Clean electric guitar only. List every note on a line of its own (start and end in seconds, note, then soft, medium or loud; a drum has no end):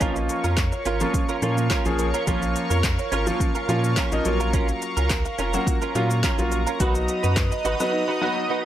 0.00 0.18 C#4 medium
0.00 0.16 F4 medium
0.00 0.15 A#4 medium
0.16 muted clean electric guitar stroke soft
0.29 muted clean electric guitar stroke soft
0.44 0.56 C#4 medium
0.44 0.56 F4 medium
0.44 0.56 A#4 medium
0.57 muted clean electric guitar stroke soft
0.72 muted clean electric guitar stroke medium
0.85 1.01 C#4 medium
0.85 1.00 F4 medium
0.85 0.99 A#4 medium
1.01 1.13 C#4 soft
1.01 1.13 F4 medium
1.01 1.13 A#4 medium
1.14 muted clean electric guitar stroke soft
1.29 1.41 C#4 medium
1.29 1.41 F4 medium
1.29 1.41 A#4 medium
1.42 1.59 C#4 medium
1.42 1.57 F4 medium
1.42 1.56 A#4 medium
1.58 muted clean electric guitar stroke soft
1.71 1.87 C#4 medium
1.71 1.85 F4 medium
1.71 1.85 A#4 medium
1.86 muted clean electric guitar stroke soft
1.99 muted clean electric guitar stroke soft
2.14 2.26 C#4 medium
2.14 2.26 F4 medium
2.14 2.26 A#4 medium
2.27 2.44 C#4 medium
2.27 2.42 F4 loud
2.27 2.41 A#4 loud
2.42 muted clean electric guitar stroke soft
2.56 muted clean electric guitar stroke soft
2.70 2.82 C#4 soft
2.70 2.83 F4 medium
2.70 2.82 A#4 medium
2.84 muted clean electric guitar stroke soft
2.98 muted clean electric guitar stroke soft
3.12 3.27 C#4 medium
3.12 3.26 F4 medium
3.12 3.26 A#4 medium
3.27 3.39 C#4 soft
3.27 3.39 F4 medium
3.27 3.39 A#4 medium
3.40 muted clean electric guitar stroke soft
3.55 3.67 C#4 medium
3.55 3.68 F4 medium
3.55 3.67 A#4 medium
3.68 3.85 C#4 medium
3.68 3.83 F4 medium
3.68 3.83 A#4 loud
3.84 muted clean electric guitar stroke medium
3.97 4.14 C#4 medium
3.97 4.12 F4 medium
3.97 4.11 A#4 medium
4.12 muted clean electric guitar stroke medium
4.25 muted clean electric guitar stroke soft
4.40 4.52 C#4 medium
4.40 4.52 F4 medium
4.40 4.52 A#4 medium
4.53 4.70 C#4 medium
4.53 4.68 F4 loud
4.53 4.67 A#4 loud
4.69 muted clean electric guitar stroke soft
4.82 muted clean electric guitar stroke soft
4.97 5.09 C#4 medium
4.97 5.09 F4 medium
4.97 5.09 A#4 medium
5.10 muted clean electric guitar stroke soft
5.25 muted clean electric guitar stroke medium
5.38 5.54 C#4 medium
5.38 5.53 F4 medium
5.38 5.52 A#4 medium
5.54 5.65 C#4 medium
5.54 5.66 F4 medium
5.54 5.65 A#4 medium
5.67 muted clean electric guitar stroke soft
5.82 5.94 C#4 medium
5.82 5.94 F4 medium
5.82 5.94 A#4 medium
5.95 6.12 C#4 medium
5.95 6.10 F4 loud
5.95 6.09 A#4 loud
6.10 muted clean electric guitar stroke soft
6.23 6.40 C#4 medium
6.23 6.38 F4 medium
6.23 6.37 A#4 medium
6.38 muted clean electric guitar stroke medium
6.52 muted clean electric guitar stroke soft
6.67 6.79 C#4 medium
6.67 6.79 F4 medium
6.67 6.79 A#4 medium
6.80 6.97 D#4 medium
6.80 6.95 F#4 loud
6.80 6.94 B4 loud
6.95 muted clean electric guitar stroke soft
7.08 muted clean electric guitar stroke soft
7.23 7.35 D#4 soft
7.23 7.36 F#4 medium
7.23 7.35 B4 medium
7.36 muted clean electric guitar stroke soft
7.51 muted clean electric guitar stroke medium
7.65 7.80 D#4 medium
7.65 7.79 F#4 loud
7.65 7.79 B4 loud
7.80 7.92 D#4 soft
7.80 7.92 F#4 medium
7.80 7.92 B4 medium
7.93 muted clean electric guitar stroke soft
8.08 8.20 D#4 medium
8.08 8.20 F#4 medium
8.08 8.20 B4 medium
8.21 8.38 D#4 medium
8.21 8.36 F#4 medium
8.21 8.35 B4 medium
8.36 muted clean electric guitar stroke soft
8.49 8.65 D#4 medium
8.49 8.65 F#4 medium
8.49 8.64 B4 medium